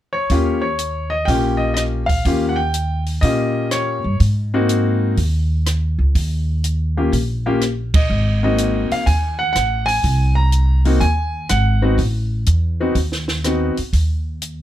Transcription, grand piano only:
0.13 0.60 C#5 medium
0.31 0.60 A#3 medium
0.31 0.60 C#4 soft
0.31 0.60 F4 soft
0.31 0.60 G4 medium
0.62 1.13 C#5 medium
1.10 1.27 D#5 medium
1.25 2.03 A#3 medium
1.25 2.03 C#4 soft
1.25 2.03 F4 soft
1.25 2.03 G4 medium
1.25 1.60 G5 medium
1.57 1.73 D#5 medium
1.74 1.82 D#5 medium
2.06 2.44 F5 medium
2.26 2.55 A#3 medium
2.26 2.55 C#4 soft
2.26 2.55 F4 medium
2.26 2.55 G4 medium
2.49 2.58 F#5 medium
2.56 3.02 G5 medium
3.21 3.98 A#3 soft
3.21 3.98 C#4 soft
3.21 3.98 F4 soft
3.21 3.99 G4 medium
3.21 3.72 D#5 medium
3.71 4.17 C#5 medium
4.54 5.15 A#3 medium
4.54 5.15 C4 medium
4.54 5.15 D#4 medium
4.54 5.15 F#4 medium
6.97 7.11 A#3 medium
6.97 7.11 C#4 soft
6.97 7.11 F4 soft
6.97 7.11 G4 medium
7.46 7.60 A#3 medium
7.46 7.60 C#4 medium
7.46 7.60 F4 medium
7.46 7.60 G4 medium
7.95 8.43 D#5 medium
8.43 9.04 A#3 medium
8.43 9.04 C4 medium
8.43 9.04 D#4 soft
8.43 9.04 F#4 medium
8.43 8.93 D#5 medium
8.92 9.06 F5 medium
9.06 9.37 G#5 medium
9.39 9.51 F#5 medium
9.53 9.88 F#5 medium
9.86 10.32 G#5 loud
10.35 10.81 A#5 medium
10.85 11.00 A#3 medium
10.85 11.00 C4 medium
10.85 11.00 D#4 medium
10.85 11.00 F#4 medium
11.00 11.46 G#5 loud
11.50 11.95 F#5 medium
11.82 11.97 B3 medium
11.82 11.97 C4 medium
11.82 11.97 D#4 medium
11.82 11.97 F#4 medium
12.80 12.94 B3 medium
12.80 12.94 C4 medium
12.80 12.94 D#4 medium
12.80 12.95 F#4 medium
13.45 13.74 B3 medium
13.45 13.74 C4 soft
13.45 13.74 D#4 soft
13.45 13.75 F#4 medium

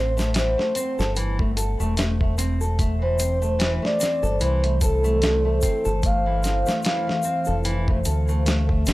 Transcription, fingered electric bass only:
0.00 0.54 A1 medium
0.99 1.76 G1 medium
1.80 3.78 E1 medium
4.23 4.39 G1 medium
4.41 5.59 C2 medium
5.86 6.63 G1 medium
7.48 8.03 F1 medium
8.07 8.84 D2 loud
8.87 8.93 F#1 medium

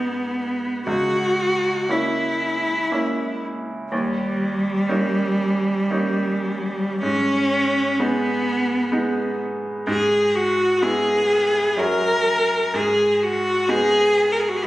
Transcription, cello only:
0.00 0.84 B3 medium
0.88 1.92 F#4 medium
1.90 3.43 E4 medium
3.92 6.99 G3 medium
7.02 8.02 C#4 medium
8.01 9.41 B3 medium
9.89 10.37 G#4 medium
10.35 10.84 F#4 medium
10.83 11.81 G#4 medium
11.79 12.77 A#4 medium
12.76 13.24 G#4 medium
13.23 13.71 F#4 medium
13.69 14.33 G#4 loud
14.32 14.42 A#4 medium
14.40 14.50 G#4 medium
14.49 14.58 F#4 medium
14.57 14.66 G#4 medium

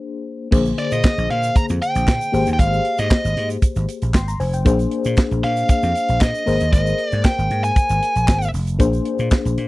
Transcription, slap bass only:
0.52 0.71 A#1 loud
0.92 1.01 A#2 medium
1.18 1.27 A#1 loud
1.30 1.49 A#2 loud
1.70 1.79 F2 loud
1.95 2.04 A#1 medium
2.08 2.18 A#2 medium
2.33 2.43 G#1 loud
2.47 2.56 D#2 medium
2.59 2.78 G#1 loud
2.99 3.08 G#2 medium
3.25 3.34 G#1 loud
3.37 3.56 G#2 loud
3.76 3.85 G#1 medium
4.02 4.14 A#1 medium
4.14 4.33 G#1 medium
4.40 4.66 F1 medium
4.66 4.85 A#1 loud
5.05 5.14 A#2 loud
5.31 5.40 A#1 loud
5.44 5.63 A#2 loud
5.83 5.92 F2 medium
6.09 6.18 A#1 medium
6.21 6.31 A#2 medium
6.47 6.57 G#1 medium
6.61 6.70 D#2 medium
6.73 6.92 G#1 loud
7.13 7.22 G#2 medium
7.38 7.47 G#1 medium
7.51 7.70 G#2 loud
7.90 7.99 G#1 medium
8.16 8.28 A#1 medium
8.28 8.47 G#1 medium
8.54 8.80 F1 medium
8.80 8.99 A#1 loud
9.19 9.28 A#2 medium
9.45 9.54 A#1 medium
9.57 9.68 A#2 loud

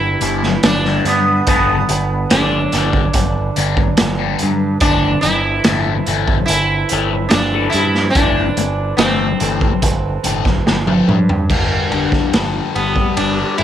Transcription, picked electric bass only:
0.00 0.15 G1 medium
0.22 0.57 G1 medium
0.63 0.98 G1 medium
1.05 1.40 G2 medium
1.48 1.82 G1 medium
1.91 2.25 G1 medium
2.31 2.66 G1 medium
2.74 3.08 G1 medium
3.15 3.49 G1 medium
3.58 3.92 G1 medium
4.01 4.34 G1 medium
4.43 4.76 G2 medium
4.81 5.16 G1 medium
5.25 5.59 G1 medium
5.66 6.00 G1 medium
6.07 6.42 G1 medium
6.49 6.83 G1 medium
6.92 7.26 G1 medium
7.32 7.67 G1 medium
7.74 8.09 G2 medium
8.16 8.50 G1 medium
8.57 8.92 G1 medium
8.98 9.33 G1 medium
9.41 9.76 G1 medium
9.83 10.17 G1 medium
10.26 10.60 G1 medium
10.66 11.01 G1 medium
11.08 11.51 G2 medium
11.50 11.75 G1 medium
11.91 12.17 G1 medium
12.34 12.59 G1 medium
12.76 13.01 G1 medium
13.17 13.43 G1 medium
13.59 13.63 G1 medium

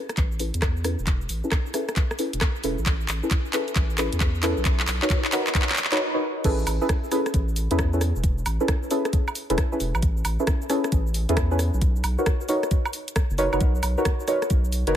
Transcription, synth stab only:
0.40 0.53 C#4 medium
0.40 0.53 E4 medium
0.40 0.53 G#4 medium
0.40 0.53 A4 medium
0.40 0.53 B4 medium
0.84 0.98 C#4 medium
0.84 0.98 E4 medium
0.84 0.98 G#4 medium
0.84 0.98 A4 medium
0.84 0.98 B4 loud
1.44 1.48 C#4 medium
1.44 1.48 E4 medium
1.44 1.48 G#4 medium
1.44 1.48 A4 medium
1.44 1.48 B4 medium
1.74 1.87 C#4 loud
1.74 1.87 E4 medium
1.74 1.87 G#4 medium
1.74 1.87 A4 medium
1.74 1.87 B4 loud
2.19 2.32 C#4 medium
2.19 2.32 E4 medium
2.19 2.32 G#4 medium
2.19 2.32 A4 medium
2.19 2.32 B4 medium
2.64 2.77 C#4 medium
2.64 2.77 E4 medium
2.64 2.77 G#4 medium
2.64 2.77 A4 medium
2.64 2.77 B4 medium
3.23 3.28 C#4 medium
3.23 3.28 E4 medium
3.23 3.28 G#4 medium
3.23 3.28 A4 medium
3.23 3.28 B4 medium
3.53 3.67 C#4 medium
3.53 3.67 E4 medium
3.53 3.67 G#4 medium
3.53 3.67 A4 medium
3.53 3.67 B4 loud
3.98 4.11 C#4 medium
3.98 4.11 E4 medium
3.98 4.11 G#4 medium
3.98 4.11 A4 medium
3.98 4.11 B4 medium
4.43 4.56 C#4 medium
4.43 4.56 E4 medium
4.43 4.56 G#4 medium
4.43 4.56 A4 medium
4.43 4.56 B4 medium
5.02 5.07 D#4 medium
5.02 5.07 F#4 medium
5.02 5.07 A#4 medium
5.02 5.07 B4 medium
5.02 5.07 C#5 medium
5.32 5.46 D#4 medium
5.32 5.46 F#4 medium
5.32 5.46 A#4 medium
5.32 5.46 B4 medium
5.32 5.46 C#5 loud
5.92 5.99 D#4 medium
5.92 5.99 F#4 medium
5.92 5.99 A#4 medium
5.92 5.99 B4 medium
5.92 5.99 C#5 loud
6.14 6.21 D#4 medium
6.14 6.21 F#4 medium
6.14 6.21 A#4 medium
6.14 6.21 B4 medium
6.14 6.21 C#5 medium
6.44 6.76 C#4 loud
6.44 6.76 E4 medium
6.44 6.76 G#4 medium
6.44 6.76 A4 medium
6.44 6.76 B4 loud
6.81 6.86 C#4 medium
6.81 6.86 E4 medium
6.81 6.86 G#4 medium
6.81 6.86 A4 medium
6.81 6.86 B4 medium
7.12 7.25 C#4 loud
7.12 7.25 E4 medium
7.12 7.25 G#4 medium
7.12 7.25 A4 medium
7.12 7.25 B4 loud
7.71 7.78 C#4 medium
7.71 7.78 E4 medium
7.71 7.78 G#4 medium
7.71 7.78 A4 medium
7.71 7.78 B4 loud
7.93 8.00 C#4 medium
7.93 8.00 E4 medium
7.93 8.00 G#4 medium
7.93 8.00 A4 medium
7.93 8.00 B4 medium
8.60 8.65 C#4 medium
8.60 8.65 E4 medium
8.60 8.65 G#4 medium
8.60 8.65 A4 medium
8.60 8.65 B4 medium
8.91 9.04 C#4 loud
8.91 9.04 E4 medium
8.91 9.04 G#4 medium
8.91 9.04 A4 medium
8.91 9.04 B4 loud
9.50 9.57 C#4 medium
9.50 9.57 E4 medium
9.50 9.57 G#4 medium
9.50 9.57 A4 medium
9.50 9.57 B4 loud
9.72 9.79 C#4 medium
9.72 9.79 E4 medium
9.72 9.79 G#4 medium
9.72 9.79 A4 medium
9.72 9.79 B4 medium
10.40 10.44 C#4 medium
10.40 10.44 E4 medium
10.40 10.44 G#4 medium
10.40 10.44 A4 medium
10.40 10.44 B4 medium
10.70 10.83 C#4 loud
10.70 10.83 E4 medium
10.70 10.83 G#4 medium
10.70 10.83 A4 medium
10.70 10.83 B4 loud
11.29 11.36 C#4 medium
11.29 11.36 E4 medium
11.29 11.36 G#4 medium
11.29 11.36 A4 medium
11.29 11.36 B4 loud
11.51 11.58 C#4 medium
11.51 11.59 E4 medium
11.51 11.59 G#4 medium
11.51 11.59 A4 medium
11.51 11.59 B4 medium
12.18 12.23 D#4 medium
12.18 12.23 F#4 medium
12.18 12.23 A#4 medium
12.18 12.23 B4 medium
12.18 12.23 C#5 medium
12.49 12.62 D#4 loud
12.49 12.62 F#4 medium
12.49 12.62 A#4 medium
12.49 12.62 B4 medium
12.49 12.62 C#5 loud
13.38 13.47 D#4 medium
13.38 13.47 F#4 medium
13.38 13.47 A#4 medium
13.38 13.47 B4 medium
13.38 13.47 C#5 loud
13.53 13.60 D#4 medium
13.53 13.60 F#4 medium
13.53 13.60 A#4 medium
13.53 13.60 B4 medium
13.53 13.60 C#5 medium
13.98 14.02 D#4 medium
13.98 14.02 F#4 medium
13.98 14.02 A#4 medium
13.98 14.02 B4 medium
13.98 14.02 C#5 medium
14.28 14.41 D#4 medium
14.28 14.41 F#4 medium
14.28 14.41 A#4 medium
14.28 14.41 B4 medium
14.28 14.41 C#5 loud
14.87 14.94 D#4 medium
14.87 14.94 F#4 medium
14.87 14.94 A#4 medium
14.87 14.94 B4 medium
14.87 14.94 C#5 loud

